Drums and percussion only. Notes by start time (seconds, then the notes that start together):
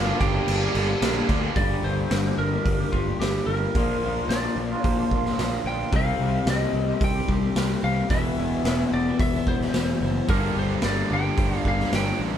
0.21 kick, crash
0.48 crash
0.75 crash
1.02 snare, crash
1.29 kick, crash
1.56 kick, open hi-hat
2.11 snare, open hi-hat
2.66 kick, open hi-hat
2.93 kick
3.21 snare, open hi-hat
3.75 kick, open hi-hat
4.30 snare, open hi-hat
4.84 kick, open hi-hat
5.11 kick
5.25 snare
5.39 snare, open hi-hat
5.93 kick, open hi-hat
6.47 snare, open hi-hat
7.01 kick, open hi-hat
7.29 kick
7.56 snare, open hi-hat
8.10 kick, open hi-hat
8.65 snare, open hi-hat
9.20 kick, open hi-hat
9.47 kick
9.61 snare
9.74 snare, open hi-hat
10.28 kick, open hi-hat
10.82 snare, open hi-hat
11.38 kick, open hi-hat
11.65 kick
11.80 snare
11.93 snare, open hi-hat